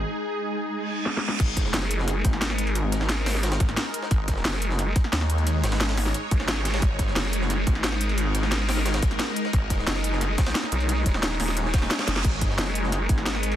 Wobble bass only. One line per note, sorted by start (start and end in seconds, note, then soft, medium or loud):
1.74 2.23 F#1 loud
2.25 3.59 G#1 loud
4.45 4.94 F#1 loud
6.31 6.81 G#1 loud
7.16 7.66 F#1 loud
7.67 9.01 G#1 loud
9.87 10.37 F#1 loud
10.38 10.54 B1 medium
10.72 11.05 B1 loud
11.06 11.38 D#1 loud
11.40 11.89 D#1 loud
12.58 13.08 F#1 loud
13.09 13.56 G#1 medium